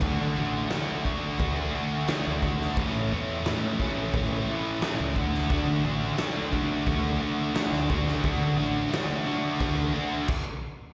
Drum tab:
CC |x---------------|----------------|----------------|------------x---|
HH |----o---o---o---|o---o---o---o---|o---o---o---o---|o---o---o-------|
SD |----o-------o--o|----o-------o--o|----o-------oo-o|----o-----------|
BD |o-----o-o-----o-|o-----o-o-----o-|o-----o-o-----o-|o-------o---o---|